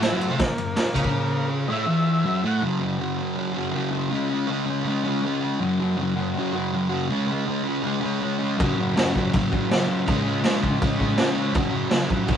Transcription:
Already playing: distorted electric guitar A2 A3
0.02 transistor combo organ E4, snare, ride
0.11 distorted electric guitar F#2 F#3
0.21 transistor combo organ A3, ride
0.29 distorted electric guitar C3 C4
0.39 muted distorted electric guitar stroke, kick, snare, ride
0.43 transistor combo organ A#3
0.58 distorted electric guitar F#2, ride
0.76 snare, ride
0.94 distorted electric guitar C#3 C#4, kick, ride
1.04 kick
1.68 distorted electric guitar A2 A3, transistor combo organ D#5
1.73 transistor combo organ E5
1.86 distorted electric guitar E2 E3
2.25 distorted electric guitar F#2 F#3
2.43 distorted electric guitar A2 A3
2.47 transistor combo organ F#5
2.61 distorted electric guitar F#2 C#3
2.66 distorted electric guitar F#3
2.80 distorted electric guitar F#3
2.84 distorted electric guitar C#3
2.98 distorted electric guitar F#2 C#3
3.03 distorted electric guitar F#3
3.18 distorted electric guitar F#3
3.22 distorted electric guitar C#3
3.35 distorted electric guitar F#2 C#3
3.40 distorted electric guitar F#3
3.53 distorted electric guitar C#3 F#3
3.58 distorted electric guitar F#2
3.72 distorted electric guitar F#2 C#3
3.76 distorted electric guitar F#3
3.91 distorted electric guitar F#3
3.96 distorted electric guitar C#3
4.09 distorted electric guitar C#3 G#3
4.14 distorted electric guitar C#4
4.29 distorted electric guitar C#4
4.34 distorted electric guitar G#3
4.47 distorted electric guitar C#3 G#3
4.52 distorted electric guitar C#4
4.66 distorted electric guitar C#4
4.70 distorted electric guitar G#3
4.84 distorted electric guitar C#3 G#3
4.89 distorted electric guitar C#4
5.04 distorted electric guitar C#3 G#3 C#4
5.22 distorted electric guitar C#3 G#3
5.27 distorted electric guitar C#4
5.41 distorted electric guitar G#3 C#4
5.60 distorted electric guitar F#2 C#3
5.64 distorted electric guitar F#3
5.80 distorted electric guitar C#3 F#3
5.97 distorted electric guitar F#2 C#3
6.02 distorted electric guitar F#3
6.16 distorted electric guitar F#3
6.20 distorted electric guitar C#3
6.34 distorted electric guitar F#2 C#3
6.39 distorted electric guitar F#3
6.53 distorted electric guitar C#3 F#3
6.58 distorted electric guitar F#2
6.72 distorted electric guitar F#2 C#3
6.76 distorted electric guitar F#3
6.89 distorted electric guitar F#3
6.93 distorted electric guitar C#3
7.08 distorted electric guitar C#3 G#3
7.12 distorted electric guitar C#4
7.27 distorted electric guitar C#4
7.32 distorted electric guitar G#3
7.45 distorted electric guitar C#3 G#3
7.50 distorted electric guitar C#4
7.63 distorted electric guitar C#4
7.68 distorted electric guitar G#3
7.82 distorted electric guitar C#3 G#3 C#4
8.00 distorted electric guitar G#3 C#4
8.05 distorted electric guitar C#3
8.19 distorted electric guitar C#3 G#3
8.24 distorted electric guitar C#4
8.39 distorted electric guitar G#3 C#4
8.57 distorted electric guitar F#2 C#3, kick, crash
8.62 distorted electric guitar F#3
8.76 distorted electric guitar F#3
8.81 distorted electric guitar C#3
8.95 distorted electric guitar F#2 C#3, snare, crash
8.99 distorted electric guitar F#3
9.14 distorted electric guitar F#3, kick
9.18 distorted electric guitar C#3
9.33 distorted electric guitar F#2 C#3, kick, crash
9.37 distorted electric guitar F#3
9.50 distorted electric guitar C#3 F#3, kick
9.55 distorted electric guitar F#2
9.69 distorted electric guitar F#2 C#3, snare, crash
9.74 distorted electric guitar F#3
9.86 distorted electric guitar F#3
9.91 distorted electric guitar C#3
10.05 distorted electric guitar C#3 G#3, kick, crash
10.10 distorted electric guitar C#4
10.23 distorted electric guitar C#4
10.28 distorted electric guitar G#3
10.41 distorted electric guitar C#3 G#3, snare, crash
10.46 distorted electric guitar C#4
10.60 distorted electric guitar C#4, kick
10.65 distorted electric guitar G#3
10.79 distorted electric guitar C#3 G#3, kick, crash
10.84 distorted electric guitar C#4
10.97 distorted electric guitar G#3 C#4, kick
11.02 distorted electric guitar C#3
11.17 distorted electric guitar C#3 G#3, snare, crash
11.21 distorted electric guitar C#4
11.34 distorted electric guitar C#4
11.39 distorted electric guitar G#3
11.52 distorted electric guitar F#2 C#3, kick, crash
11.57 distorted electric guitar F#3
11.71 distorted electric guitar F#3
11.75 distorted electric guitar C#3
11.88 distorted electric guitar F#2 C#3, snare, crash
11.93 distorted electric guitar F#3
12.07 distorted electric guitar F#3, kick
12.11 distorted electric guitar C#3
12.27 distorted electric guitar F#2 C#3, kick, crash
12.31 distorted electric guitar F#3

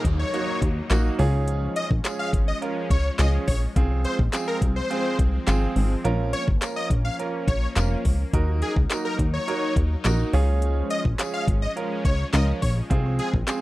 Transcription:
Already playing: analog synth pad F#3 A#3 D#4, grand piano A#3 D#4 G#4, downlifter
0.05 analog synth bass D#2, kick, closed hi-hat
0.19 supersaw synth C#5
0.33 grand piano A#3 D#4 F#4, closed hi-hat
0.62 analog synth bass D#2, kick, closed hi-hat
0.90 analog synth bass A#1, grand piano A#3 D#4 F#4, snare, clap, closed hi-hat, tambourine
1.19 analog synth bass C#2, analog synth pad F3 G#3 C#4, grand piano C#4 F4 G#4, open hi-hat
1.48 closed hi-hat
1.76 supersaw synth D#5, closed hi-hat
1.91 analog synth bass A#1, kick
2.04 grand piano C#4 F4 G#4, snare, clap, closed hi-hat, tambourine
2.19 supersaw synth F5
2.33 analog synth bass G#1, kick, closed hi-hat
2.48 supersaw synth D#5
2.62 grand piano C#4 F4 A#4, closed hi-hat
2.90 analog synth bass C#2, supersaw synth C#5, kick, closed hi-hat
3.18 analog synth bass C#2, grand piano C#4 F4 G#4, supersaw synth D#5, snare, clap, closed hi-hat, tambourine
3.48 analog synth bass A#1, supersaw synth C#5, kick, open hi-hat
3.76 analog synth bass C2, analog synth pad G#3 C4, grand piano C4 F4 G#4, kick, closed hi-hat
4.05 supersaw synth C5, closed hi-hat
4.19 analog synth bass A#1, kick
4.33 grand piano C4 F4 G#4, snare, clap, closed hi-hat, tambourine
4.48 supersaw synth A#4
4.62 analog synth bass C2, kick, closed hi-hat
4.76 supersaw synth C5
4.90 grand piano C4 F4 G#4, closed hi-hat
5.19 analog synth bass C2, kick, closed hi-hat
5.47 analog synth bass G#1, grand piano C4 F4 G#4, snare, clap, closed hi-hat, tambourine
5.76 analog synth bass G#1, open hi-hat
6.04 analog synth bass A#1, analog synth pad A#3 C#4, grand piano C#4 F4 A#4, closed hi-hat
6.33 supersaw synth C#5, closed hi-hat
6.48 analog synth bass G#1, kick
6.61 grand piano C#4 F4 A#4, snare, clap, closed hi-hat, tambourine
6.76 supersaw synth D#5
6.90 analog synth bass A#1, kick, closed hi-hat
7.05 supersaw synth F5
7.19 grand piano C#4 F4 A#4, closed hi-hat
7.48 analog synth bass A#1, supersaw synth C#5, kick, closed hi-hat
7.76 analog synth bass F1, grand piano C#4 F4 A#4, snare, clap, closed hi-hat, tambourine
8.05 analog synth bass C#2, kick, open hi-hat
8.33 analog synth bass D#2, analog synth pad F#3 D#4, grand piano D#4 F#4 A#4, kick, closed hi-hat
8.62 supersaw synth G#4, closed hi-hat
8.76 analog synth bass C#2, kick
8.90 grand piano D#4 F#4 A#4, snare, clap, closed hi-hat, tambourine
9.05 supersaw synth A#4
9.19 analog synth bass D#2, kick, closed hi-hat
9.34 supersaw synth C#5
9.48 grand piano D#4 F#4 A#4, closed hi-hat
9.76 analog synth bass D#2, kick, closed hi-hat
10.04 analog synth bass A#1, grand piano D#4 F#4 A#4, snare, clap, closed hi-hat, tambourine
10.33 analog synth bass C#2, analog synth pad F3 G#3 C#4, grand piano C#4 F4 G#4, open hi-hat
10.62 closed hi-hat
10.90 supersaw synth D#5, closed hi-hat
11.05 analog synth bass A#1, kick
11.19 grand piano C#4 F4 G#4, snare, clap, closed hi-hat, tambourine
11.34 supersaw synth F5
11.48 analog synth bass G#1, kick, closed hi-hat
11.62 supersaw synth D#5
11.76 grand piano C#4 F4 A#4, closed hi-hat
12.05 analog synth bass C#2, supersaw synth C#5, kick, closed hi-hat
12.33 analog synth bass C#2, grand piano C#4 F4 A#4, supersaw synth D#5, snare, clap, closed hi-hat, tambourine
12.62 analog synth bass A#1, supersaw synth C#5, kick, open hi-hat
12.90 analog synth bass C2, grand piano C4 F4 G#4, analog synth pad C4, kick, closed hi-hat
13.19 supersaw synth G#4, closed hi-hat
13.33 analog synth bass A#1, kick
13.47 grand piano C4 F4 G#4, snare, clap, closed hi-hat, tambourine

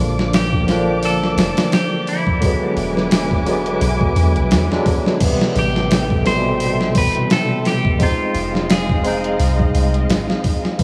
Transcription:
Already playing: 808-style bass A#1, tine electric piano D3 F3 A#3 D4, string section A#3 D5 D6
0.19 snare
0.33 clean electric guitar G4, snare, open hi-hat
0.53 kick
0.67 tine electric piano D3 F3 A#3, snare, open hi-hat
0.71 tine electric piano D4
1.03 clean electric guitar A4, open hi-hat
1.24 snare
1.37 808-style bass F1, snare, open hi-hat
1.57 snare, open hi-hat
1.72 clean electric guitar G4, snare, open hi-hat
2.07 clean electric guitar E4, open hi-hat
2.27 kick
2.41 tine electric piano D3 F#3 G#3, string section B4 E5 G#5 D6, kick, open hi-hat
2.46 tine electric piano B3
2.77 808-style bass E1, open hi-hat
2.97 snare
3.11 snare, open hi-hat
3.31 kick
3.46 tine electric piano D3 F#3 G#3, open hi-hat
3.50 tine electric piano B3
3.66 closed hi-hat
3.81 808-style bass B1, open hi-hat
4.01 kick
4.16 808-style bass E2, open hi-hat
4.36 808-style bass B1, closed hi-hat
4.51 808-style bass E2, snare, open hi-hat
4.71 tine electric piano D3 F#3 G#3 D4, snare
4.86 kick, open hi-hat
5.06 snare
5.20 tine electric piano C3 E3 G3, string section A4 E5 G5, kick, open hi-hat, crash
5.25 tine electric piano B3
5.41 snare
5.56 808-style bass A1, clean electric guitar G4, open hi-hat
5.76 snare
5.91 snare, open hi-hat
6.10 kick
6.25 tine electric piano C3 E3 G3, clean electric guitar C5, snare, open hi-hat
6.29 tine electric piano B2
6.60 open hi-hat
6.81 snare
6.95 808-style bass G1, clean electric guitar B4, kick, open hi-hat
7.15 closed hi-hat
7.30 clean electric guitar A4, snare, open hi-hat
7.65 clean electric guitar G4, snare, open hi-hat
7.85 kick
7.99 tine electric piano G#3 C4 D#4, string section G#3 D#5 F5, kick, open hi-hat
8.03 clean electric guitar F4, tine electric piano G5
8.35 808-style bass F1, open hi-hat
8.55 snare
8.70 clean electric guitar G#4, snare, open hi-hat
8.89 kick
9.03 tine electric piano G#3 C4 D#4, open hi-hat
9.08 tine electric piano G5
9.24 closed hi-hat
9.39 808-style bass C2, open hi-hat
9.59 kick
9.74 808-style bass C2, open hi-hat
9.94 closed hi-hat
10.09 808-style bass G#1, snare, open hi-hat
10.30 snare
10.44 kick, open hi-hat
10.65 snare
10.78 tine electric piano C3 E3, string section A4 E5 G5, kick, open hi-hat

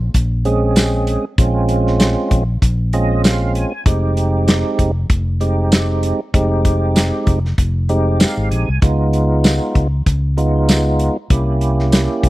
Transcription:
0.14 fingered electric bass A#1, kick, closed hi-hat
0.45 tonewheel organ G#3 C4 C#4 G#4, closed hi-hat
0.76 snare, closed hi-hat, tambourine
1.07 closed hi-hat
1.38 fingered electric bass A#1, tonewheel organ G#3 C4 C#4 F4, kick, closed hi-hat
1.69 closed hi-hat
1.87 snare
2.00 snare, closed hi-hat, tambourine
2.31 fingered electric bass A#1, kick, closed hi-hat
2.62 fingered electric bass A#1, kick, closed hi-hat
2.93 tonewheel organ G#3 C4 C#4 F4 D#5, closed hi-hat
3.24 tonewheel organ F5, snare, closed hi-hat, tambourine
3.55 tonewheel organ G#5, closed hi-hat
3.86 fingered electric bass F1, tonewheel organ G#3 C4 D#4 G4, kick, closed hi-hat
4.17 closed hi-hat
4.48 snare, closed hi-hat, tambourine
4.79 fingered electric bass F1, kick, closed hi-hat
5.10 fingered electric bass F1, kick, closed hi-hat
5.40 tonewheel organ G#3 C4 D#4 G4, closed hi-hat
5.72 snare, closed hi-hat, tambourine
6.03 closed hi-hat
6.34 fingered electric bass F1, tonewheel organ G#3 C4 D#4 G4, kick, closed hi-hat
6.65 kick, closed hi-hat
6.96 snare, closed hi-hat, tambourine
7.27 fingered electric bass F1, kick, closed hi-hat
7.45 snare
7.58 fingered electric bass F1, kick, closed hi-hat
7.89 tonewheel organ G#3 C4 D#4 G4, closed hi-hat
8.20 tonewheel organ F5, snare, closed hi-hat, tambourine
8.37 fingered electric bass G#1
8.51 fingered electric bass A#1, tonewheel organ G#5, closed hi-hat
8.68 fingered electric bass C2
8.82 fingered electric bass C#2, tonewheel organ G#3 B3 D#4 F4, kick, closed hi-hat
9.13 closed hi-hat
9.44 snare, closed hi-hat, tambourine
9.75 fingered electric bass C#2, kick, closed hi-hat
10.06 fingered electric bass C#2, kick, closed hi-hat
10.37 tonewheel organ G#3 B3 D#4 F4, closed hi-hat
10.69 snare, closed hi-hat, tambourine
10.99 closed hi-hat
11.30 fingered electric bass C2, tonewheel organ A#3 C#4 E4 G4, kick, closed hi-hat
11.61 closed hi-hat
11.79 snare
11.92 snare, closed hi-hat, tambourine
12.23 fingered electric bass C2, kick, closed hi-hat

